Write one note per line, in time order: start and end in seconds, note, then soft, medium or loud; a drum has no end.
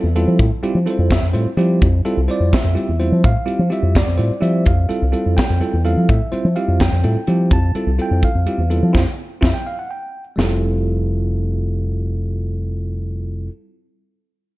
0.03 0.24 E2 medium
0.16 0.45 G3 medium
0.16 0.44 C4 medium
0.16 0.44 E4 medium
0.16 0.45 F4 medium
0.16 0.44 A4 medium
0.16 closed hi-hat medium
0.28 0.38 F3 medium
0.39 0.50 A2 loud
0.39 kick medium
0.39 closed hi-hat medium
0.63 0.77 G3 medium
0.63 0.77 C4 medium
0.63 0.77 E4 medium
0.63 0.78 F4 medium
0.63 0.78 G4 medium
0.63 muted fingered electric bass stroke soft
0.63 closed hi-hat medium
0.75 0.85 F3 medium
0.86 1.15 G3 medium
0.86 1.15 C4 medium
0.86 1.15 E4 medium
0.86 1.15 F4 medium
0.86 1.15 A4 medium
0.86 closed hi-hat medium
0.90 1.11 C5 medium
0.99 1.19 F2 medium
1.11 1.26 E5 medium
1.11 kick medium
1.11 snare medium
1.11 closed hi-hat medium
1.23 1.33 F2 medium
1.33 1.45 A2 medium
1.33 1.48 G3 medium
1.33 1.48 C4 medium
1.33 1.48 E4 soft
1.33 1.48 F4 medium
1.33 1.48 C5 medium
1.33 closed hi-hat medium
1.46 muted fingered electric bass stroke soft
1.57 1.78 F3 medium
1.57 1.86 G3 medium
1.57 1.86 C4 medium
1.57 1.87 E4 medium
1.57 1.86 F4 medium
1.57 1.86 G4 medium
1.57 closed hi-hat medium
1.82 2.03 F2 loud
1.82 kick medium
1.82 closed hi-hat medium
2.05 2.19 G3 medium
2.05 2.20 C4 medium
2.05 2.20 E4 medium
2.05 2.20 F4 medium
2.05 2.20 A4 medium
2.05 muted fingered electric bass stroke soft
2.05 closed hi-hat soft
2.17 2.28 C2 medium
2.28 2.58 G3 medium
2.28 2.58 C4 medium
2.28 2.58 E4 medium
2.28 2.57 F4 medium
2.28 2.57 C5 medium
2.28 2.53 D5 medium
2.28 muted fingered electric bass stroke soft
2.28 closed hi-hat medium
2.40 2.51 F2 medium
2.53 3.21 E5 medium
2.53 kick medium
2.53 snare medium
2.53 closed hi-hat medium
2.64 2.75 F2 medium
2.75 2.90 G3 medium
2.75 2.90 C4 medium
2.75 2.90 E4 medium
2.75 2.90 F4 medium
2.75 2.90 G4 medium
2.75 closed hi-hat medium
2.89 3.09 E2 medium
2.99 3.29 G3 medium
2.99 3.29 C4 medium
2.99 3.29 E4 medium
2.99 3.29 F4 medium
2.99 3.29 C5 medium
2.99 closed hi-hat soft
3.12 3.23 F3 medium
3.24 3.35 A2 medium
3.24 3.69 F5 medium
3.24 kick medium
3.24 closed hi-hat medium
3.46 3.61 G3 medium
3.46 3.61 C4 medium
3.46 3.61 E4 medium
3.46 3.61 F4 medium
3.46 3.61 G4 medium
3.46 muted fingered electric bass stroke soft
3.46 closed hi-hat soft
3.59 3.70 F3 medium
3.70 4.00 G3 medium
3.70 3.99 C4 medium
3.70 4.00 E4 soft
3.70 4.00 F4 medium
3.70 4.00 G4 medium
3.70 3.95 E5 medium
3.70 closed hi-hat medium
3.83 4.04 F2 medium
3.95 4.63 D5 medium
3.95 kick medium
3.95 snare medium
3.95 closed hi-hat medium
4.07 4.17 F2 medium
4.17 4.29 A2 medium
4.17 4.33 G3 soft
4.17 4.33 C4 soft
4.17 4.33 E4 soft
4.17 4.32 F4 medium
4.17 4.33 C5 medium
4.17 closed hi-hat medium
4.30 muted fingered electric bass stroke soft
4.41 4.63 F3 medium
4.41 4.71 G3 medium
4.41 4.71 C4 medium
4.41 4.71 E4 medium
4.41 4.71 F4 medium
4.41 4.71 G4 medium
4.41 4.65 E5 medium
4.41 closed hi-hat medium
4.66 4.87 F2 medium
4.66 5.34 F5 medium
4.66 kick medium
4.66 closed hi-hat medium
4.89 5.04 G3 medium
4.89 5.04 C4 medium
4.89 5.04 E4 medium
4.89 5.04 F4 medium
4.89 5.04 A4 medium
4.89 muted fingered electric bass stroke soft
4.89 closed hi-hat medium
5.02 5.13 C2 medium
5.12 5.42 G3 medium
5.12 5.42 C4 medium
5.12 5.42 E4 medium
5.12 5.42 F4 medium
5.12 5.42 A4 medium
5.12 muted fingered electric bass stroke soft
5.12 closed hi-hat medium
5.26 5.36 F2 medium
5.37 5.81 G5 medium
5.37 kick medium
5.37 snare medium
5.37 closed hi-hat medium
5.50 5.60 F2 medium
5.60 5.76 G3 medium
5.60 5.76 C4 soft
5.60 5.75 E4 medium
5.60 5.76 F4 medium
5.60 5.76 A4 medium
5.60 closed hi-hat medium
5.73 5.94 E2 medium
5.85 6.14 G3 medium
5.85 6.14 C4 medium
5.85 6.14 E4 medium
5.85 6.14 F4 soft
5.85 6.14 A4 medium
5.85 6.08 F5 medium
5.85 closed hi-hat medium
5.97 6.08 F3 medium
6.09 6.20 A2 medium
6.09 6.77 E5 medium
6.09 kick medium
6.09 closed hi-hat medium
6.32 6.47 G3 medium
6.32 6.47 C4 medium
6.32 6.47 E4 soft
6.32 6.47 F4 medium
6.32 6.47 C5 medium
6.32 muted fingered electric bass stroke soft
6.32 closed hi-hat soft
6.45 6.55 F3 medium
6.56 6.85 G3 medium
6.56 6.85 C4 soft
6.56 6.85 E4 medium
6.56 6.85 F4 medium
6.56 6.85 G4 medium
6.56 6.79 F5 medium
6.56 closed hi-hat soft
6.68 6.89 F2 medium
6.80 7.48 G5 medium
6.80 kick medium
6.80 snare medium
6.80 closed hi-hat medium
6.92 7.03 F2 medium
7.04 7.15 A2 medium
7.04 7.18 G3 medium
7.04 7.18 C4 soft
7.04 7.19 E4 soft
7.04 7.19 F4 soft
7.04 7.19 A4 medium
7.04 closed hi-hat soft
7.16 muted fingered electric bass stroke soft
7.27 7.49 F3 medium
7.27 7.57 G3 medium
7.27 7.57 C4 medium
7.27 7.57 E4 medium
7.27 7.57 F4 medium
7.27 7.57 G4 medium
7.27 closed hi-hat soft
7.51 7.72 F2 medium
7.51 7.97 A5 medium
7.51 kick medium
7.51 closed hi-hat medium
7.75 7.90 G3 medium
7.75 7.90 C4 medium
7.75 7.90 E4 soft
7.75 7.90 F4 soft
7.75 7.90 A4 medium
7.75 muted fingered electric bass stroke soft
7.75 closed hi-hat soft
7.87 7.97 C2 medium
7.99 8.28 G3 medium
7.99 8.28 C4 soft
7.99 8.28 E4 soft
7.99 8.28 F4 medium
7.99 8.28 A4 medium
7.99 8.23 G5 medium
7.99 closed hi-hat soft
8.11 8.22 F2 medium
8.23 8.91 F5 medium
8.23 kick medium
8.23 closed hi-hat medium
8.35 8.45 F2 medium
8.47 8.61 G3 medium
8.47 8.61 C4 medium
8.47 8.61 E4 soft
8.47 8.61 F4 soft
8.47 8.61 G4 medium
8.47 closed hi-hat soft
8.58 8.79 E2 medium
8.70 8.94 G3 medium
8.70 8.92 C4 medium
8.70 8.92 E4 medium
8.70 8.92 F4 medium
8.70 8.94 A4 medium
8.70 closed hi-hat medium
8.83 8.93 F3 medium
8.93 9.03 F2 medium
8.93 9.01 C4 medium
8.93 9.01 E4 medium
8.93 9.01 F4 medium
8.93 kick medium
8.93 snare medium
9.41 9.51 F2 medium
9.41 9.49 C4 medium
9.41 9.49 E4 medium
9.41 9.49 F4 medium
9.41 9.54 E5 medium
9.41 kick medium
9.41 snare medium
9.54 9.65 G5 medium
9.67 9.78 F5 medium
9.79 9.90 F#5 medium
9.91 10.23 G5 medium
10.36 13.48 F1 medium
10.36 13.46 G3 medium
10.36 13.47 C4 medium
10.36 13.48 E4 medium
10.36 13.49 F4 medium
10.36 snare medium
10.40 13.50 A4 medium